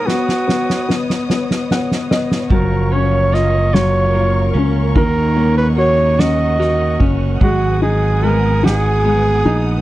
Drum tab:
RD |------------|x-x---x-x-x-|x-x-x-x---x-|x-x-x-x-x-x-|
SD |oooooooooooo|----o-o-----|------o-o---|------o-----|
BD |------------|o-----------|o---------o-|o-----------|